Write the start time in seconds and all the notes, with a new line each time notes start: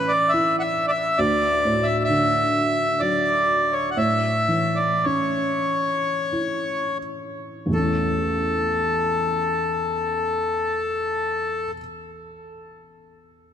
Already playing: A2 E3 C#4 B4
0.08 D5
0.29 E5
0.33 E4
0.59 E5 F#5
0.88 D5 E5
1.18 D2 D5
1.65 A2
1.83 E5
2.04 E5
2.10 D3
3.00 F#3 D5
3.73 C#5
3.91 F#5
3.97 A2 E5
4.48 E3
4.76 D5
5.04 C#4 C#5
6.32 E4
7.66 A1 E2
7.71 E3 A3 A4
7.79 C#4 E4